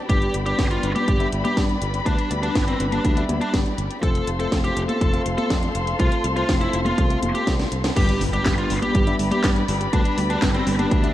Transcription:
Already playing: G4 D5
0.09 G1 G3 B3 D4 G4 B4 B5, kick, closed hi-hat
0.22 closed hi-hat
0.34 G1, closed hi-hat
0.46 G3 B3 D4 G4 B4, closed hi-hat
0.59 G1, kick, snare, closed hi-hat
0.71 F4, closed hi-hat
0.83 G1 G3 B3 D4 B4, closed hi-hat
0.95 G4, closed hi-hat, high conga
1.08 G1, kick, closed hi-hat
1.20 G3 B3 D4 E5, closed hi-hat
1.32 G1, closed hi-hat
1.45 G4, closed hi-hat, high conga
1.57 G2 G3 B3 D4 D5, kick, snare, closed hi-hat
1.69 closed hi-hat
1.82 G1, closed hi-hat
1.94 closed hi-hat
2.06 D2 G3 B3 D4 B4, kick, closed hi-hat
2.19 closed hi-hat
2.31 D2, closed hi-hat
2.43 G3 B3 D4 B4, closed hi-hat
2.55 G1, kick, snare, closed hi-hat
2.68 C4, closed hi-hat
2.80 G1 G3 B3 D4 B4, closed hi-hat
2.92 D4, closed hi-hat, high conga
3.04 D2, kick, closed hi-hat
3.17 G3 B3 D4 E5, closed hi-hat
3.29 D2, closed hi-hat, high conga
3.41 D4, closed hi-hat
3.54 G1 G3 B3 D4 D5, kick, snare, closed hi-hat
3.66 closed hi-hat
3.78 G1, closed hi-hat
3.91 closed hi-hat
4.03 F1 A3 C4 F4 A4 C5 F5 C6, kick, closed hi-hat
4.15 closed hi-hat
4.27 F1, closed hi-hat
4.40 A3 C4 F4 A4 C5, closed hi-hat
4.52 F1, kick, snare, closed hi-hat
4.64 G4, closed hi-hat
4.77 F1 A3 C4 F4 C5, closed hi-hat
4.89 A4, closed hi-hat, high conga
5.01 F1, kick, closed hi-hat
5.13 A3 C4 F4 F5, closed hi-hat
5.26 F1, closed hi-hat
5.38 A4, closed hi-hat, high conga
5.50 F2 A3 C4 F4 D5, kick, snare, closed hi-hat
5.63 closed hi-hat
5.75 F1, closed hi-hat
5.87 closed hi-hat
5.99 C2 A3 C4 F4 C5, kick, closed hi-hat
6.12 closed hi-hat
6.24 C2, closed hi-hat
6.36 A3 C4 F4 C5, closed hi-hat
6.49 F1, kick, snare, closed hi-hat
6.61 E4, closed hi-hat
6.73 F1 A3 C4 F4 C5, closed hi-hat
6.86 F4, closed hi-hat, high conga
6.98 C2, kick, closed hi-hat
7.10 A3 C4 F4 F5, closed hi-hat
7.22 F1, closed hi-hat, high conga
7.35 G4, closed hi-hat
7.47 C2 A3 C4 F4 D5, kick, snare, closed hi-hat
7.59 snare, closed hi-hat
7.72 C2, closed hi-hat
7.84 snare, closed hi-hat
7.96 G1 G3 B3 D4 G4 B4 D5 B5, kick, closed hi-hat, crash, impact
8.09 D4, closed hi-hat
8.21 G1 G3, open hi-hat
8.33 G3 B3 D4 G4 B4, closed hi-hat
8.46 G1 G3, kick, snare, clap, closed hi-hat
8.58 D4 F4, closed hi-hat
8.70 G1 G3 B3 D4 B4, open hi-hat
8.82 G4, closed hi-hat, high conga
8.95 G1 G3, kick, closed hi-hat
9.07 G3 B3 D4 E5, closed hi-hat
9.19 G1 G3, open hi-hat
9.31 G4, closed hi-hat, high conga
9.44 G2 G3 B3 D4 D5, kick, snare, clap, closed hi-hat
9.56 D4, closed hi-hat
9.68 G1 G3, open hi-hat
9.81 G4, closed hi-hat
9.93 D2 G3 B3 D4 B4, kick, closed hi-hat
10.05 D4, closed hi-hat
10.18 D2 G3, open hi-hat
10.30 G3 B3 D4 G4 B4, closed hi-hat
10.42 G1 G3, kick, snare, clap, closed hi-hat
10.55 C4 D4, closed hi-hat
10.67 G1 G3 B3 D4 B4, open hi-hat
10.79 D4 G4, closed hi-hat, high conga
10.91 D2 G3, kick, closed hi-hat
11.04 G3 B3 D4 E5, closed hi-hat

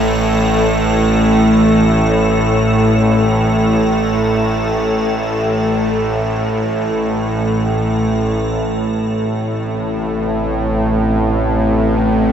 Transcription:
Already playing: A1 A2 A3 A4
8.44 A1 A2 C4
9.57 A4
9.72 E5

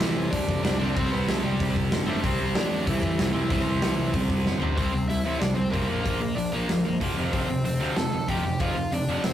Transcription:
Already playing: C3 G3 C4
0.00 A1 E3 E4, snare, open hi-hat
0.31 C2 D4 D5, kick, open hi-hat
0.48 A1, kick
0.63 C2 D4 D5, snare, open hi-hat
0.79 C2 G3 C4 D4 D5
0.83 C3
0.95 C2 C3 G3 C4 C5, kick, open hi-hat
0.99 C4
1.12 C2 B3 B4
1.28 C2 A3 A4, snare, open hi-hat
1.42 C2 G3 G4
1.60 C2, kick, open hi-hat
1.76 C2, kick
1.92 G1, snare, open hi-hat
2.06 C3 G3 A3 C4 A4
2.22 C2 C3 G3 C4 C5, kick, open hi-hat
2.26 C4
2.40 C2
2.55 A1 D4 D5, snare, open hi-hat
2.87 C2 E3 E4, kick, open hi-hat
3.03 A1, kick
3.19 C2 E3 E4, snare, open hi-hat
3.33 C2 G3 C4
3.37 C3
3.48 C2 C3 E3 G3 C4 E4, kick, open hi-hat
3.66 C2
3.81 C2 E3 E4, snare, open hi-hat
3.97 C2
4.14 C2, kick, open hi-hat
4.30 C2, kick
4.45 G1, snare
4.60 C3 G3 C4, floor tom
4.76 C2 C3 G3 C4 C5, kick, open hi-hat
4.93 C2 C3 G3
5.08 C2 C3 G3 E4 E5, open hi-hat
5.25 A1 C3 G3 C4 E4 E5
5.40 C2 C3 G3 D4 D5, snare, open hi-hat
5.55 C2 C3 G3 C4 C5
5.70 C2 C3 G3 A#3 C4 A#4, kick, open hi-hat
5.88 A#1 A#2 F3 A#3
6.02 A#1 A#2 F3 A#3 A#4, kick, open hi-hat
6.06 A#3
6.20 A#2 F3
6.35 A#1 A#2 F3 D4 D5, open hi-hat
6.52 A#1 A#2 F3 A#3 A#4
6.69 A#1 A#2 F3, snare, open hi-hat
6.85 A#1 A#2 F3
7.01 F1 A#2 F3 A#3, kick, open hi-hat
7.17 F1 F2 C3 F3
7.32 F1 F2 C3 F3 C4 C5, kick, open hi-hat
7.48 F1 F2 C3
7.64 F1 F2 C3 C4 C5, open hi-hat
7.80 D2 F2 C3 F3
7.96 F1 F2 C3 A4 A5, snare, open hi-hat
8.12 F1 F2 C3
8.28 F1 F2 C3 F3 G4 G5, kick, open hi-hat
8.44 F1 F2 C3
8.60 F1 F2 C3 F3 F4 F5, kick, open hi-hat
8.76 F2 C3
8.92 F1 F2 C3 D4 D5, open hi-hat
9.07 F1 F2 C3 F3
9.24 F1 F2 C3 C4 C5, snare, open hi-hat

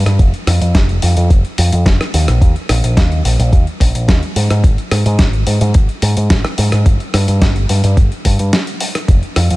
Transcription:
0.06 G2, cross-stick, closed hi-hat
0.19 F1, kick, closed hi-hat
0.34 closed hi-hat
0.47 F2, cross-stick, open hi-hat
0.61 F2, closed hi-hat
0.75 F1, kick, snare, closed hi-hat
0.89 closed hi-hat
1.02 F2, open hi-hat
1.17 F2, closed hi-hat
1.30 F1, kick, closed hi-hat
1.45 closed hi-hat
1.58 F2, open hi-hat
1.72 F2, closed hi-hat
1.86 F1, kick, snare, closed hi-hat
2.01 cross-stick, closed hi-hat
2.14 D#2, open hi-hat
2.28 A#1, cross-stick, closed hi-hat
2.41 D#2, kick, closed hi-hat
2.56 closed hi-hat
2.69 A#1, cross-stick, open hi-hat
2.84 A#1, closed hi-hat
2.97 D#2, kick, snare, closed hi-hat
3.12 closed hi-hat
3.25 A#1, open hi-hat
3.39 A#1, closed hi-hat
3.52 D#2, kick, closed hi-hat
3.67 closed hi-hat
3.80 A#1, kick, open hi-hat
3.95 A#1, closed hi-hat
4.08 D#2, kick, snare, closed hi-hat
4.23 closed hi-hat
4.36 G#2, open hi-hat
4.50 G#2, cross-stick, closed hi-hat
4.64 G#1, kick, closed hi-hat
4.78 closed hi-hat
4.91 G#2, cross-stick, open hi-hat
5.06 G#2, closed hi-hat
5.19 G#1, kick, snare, closed hi-hat
5.33 closed hi-hat
5.47 G#2, open hi-hat
5.61 G#2, closed hi-hat
5.74 G#1, kick, closed hi-hat
5.89 closed hi-hat
6.02 G#2, open hi-hat
6.17 G#2, closed hi-hat
6.30 G#1, kick, snare, closed hi-hat
6.45 cross-stick, closed hi-hat
6.58 G#2, open hi-hat
6.72 G#2, cross-stick, closed hi-hat
6.86 G1, kick, closed hi-hat
7.00 closed hi-hat
7.14 G2, cross-stick, open hi-hat
7.28 G2, closed hi-hat
7.41 G1, kick, snare, closed hi-hat
7.56 closed hi-hat
7.69 G2, open hi-hat
7.84 G2, closed hi-hat
7.97 G1, kick, closed hi-hat
8.12 closed hi-hat
8.25 G2, kick, open hi-hat
8.39 G2, closed hi-hat
8.53 snare, closed hi-hat
8.67 closed hi-hat
8.80 open hi-hat
8.95 cross-stick, closed hi-hat
9.08 F1, kick, closed hi-hat
9.23 closed hi-hat
9.36 F2, cross-stick, open hi-hat
9.50 F2, closed hi-hat

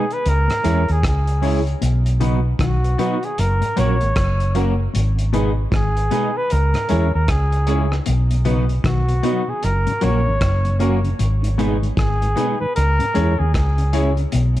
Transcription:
Already playing: G#4
0.11 B4, closed hi-hat
0.26 C#2 A#4, closed hi-hat
0.48 G#2, cross-stick, closed hi-hat
0.64 E2 F#2 G#3 C#4 E4 G#4 C#5, closed hi-hat
0.89 D#2 G#4, closed hi-hat
1.03 C#2 G#4, kick, cross-stick, closed hi-hat
1.27 closed hi-hat
1.41 G#3 C#4 E4 G#4 C#5, open hi-hat
1.67 closed hi-hat
1.81 B1 B2, closed hi-hat
2.06 closed hi-hat
2.20 C#3 F#3 B3 D#4 F#4 B4, closed hi-hat
2.59 B1 D#3 F#4, kick, cross-stick, closed hi-hat
2.84 F#4 B4, closed hi-hat
2.98 B2 F#3 B3 D#4 F#4 B4, closed hi-hat
3.23 G#4, closed hi-hat
3.38 F#1 A#4, closed hi-hat
3.61 G#2, closed hi-hat
3.76 A#1 F#2 F#3 A#3 C#4 F#4 A#4 C#5, closed hi-hat
4.01 G#1 F#4 A#4, closed hi-hat
4.16 F#1, kick, cross-stick, closed hi-hat
4.40 closed hi-hat
4.55 F#3 A#3 C#4 F#4 A#4, closed hi-hat
4.79 muted clean electric guitar stroke
4.94 G#1 G#2, closed hi-hat
5.19 closed hi-hat
5.33 B2 G#3 B3 D#4 G#4 B4, closed hi-hat
5.72 G#1 D#3 G#4, kick, cross-stick, closed hi-hat
5.96 G#4 B4, closed hi-hat
6.11 B2 G#3 B3 D#4 G#4 B4, closed hi-hat
6.37 B4
6.50 C#2 A#4, closed hi-hat
6.74 G#2, cross-stick, closed hi-hat
6.89 E2 F#2 G#3 C#4 E4 G#4 C#5, closed hi-hat
7.14 D#2 A#4
7.28 C#2 G#4, kick, cross-stick, closed hi-hat
7.52 closed hi-hat
7.67 G#3 C#4 E4 G#4 C#5, closed hi-hat
7.91 muted clean electric guitar stroke, cross-stick
8.06 B1 B2, closed hi-hat
8.30 B2, closed hi-hat
8.45 C#3 F#3 B3 D#4 F#4 B4, closed hi-hat
8.69 B2, closed hi-hat
8.84 B1 D#3 F#4, kick, cross-stick, closed hi-hat
9.08 B2 F#4 B4, closed hi-hat
9.23 B2 F#3 B3 D#4 F#4 B4, closed hi-hat
9.48 B2 G#4
9.63 F#1 A#4, closed hi-hat
9.86 F#2 G#2 C#3, closed hi-hat
10.01 A#1 F#2 F#3 A#3 C#4 F#4 A#4 C#5, closed hi-hat
10.25 G#1 F#2 C#3 F#4 A#4
10.41 F#1, kick, cross-stick, closed hi-hat
10.65 F#2 C#3, closed hi-hat
10.79 F#3 A#3 C#4 F#4 A#4, closed hi-hat
11.04 F#2 C#3, closed hi-hat
11.19 G#1 G#2, closed hi-hat
11.43 G#2 D#3, closed hi-hat
11.58 B2 G#3 B3 D#4 G#4 B4, closed hi-hat
11.82 G#2 D#3, closed hi-hat
11.97 G#1 D#3 G#4, kick, cross-stick, closed hi-hat
12.21 G#2 D#3 G#4 B4, closed hi-hat
12.36 B2 G#3 B3 D#4 G#4 B4, closed hi-hat
12.60 G#2 D#3 B4
12.76 C#2 A#4, closed hi-hat
12.99 G#2 C#3, closed hi-hat
13.14 E2 F#2 G#3 C#4 E4 G#4 C#5, closed hi-hat
13.38 D#2 C#3 G#4
13.54 C#2 G#4, kick, cross-stick, closed hi-hat
13.78 C#3, closed hi-hat
13.93 G#3 C#4 E4 G#4 C#5, closed hi-hat
14.17 C#3, muted clean electric guitar stroke, closed hi-hat
14.32 B1 B2, closed hi-hat
14.56 B2, closed hi-hat

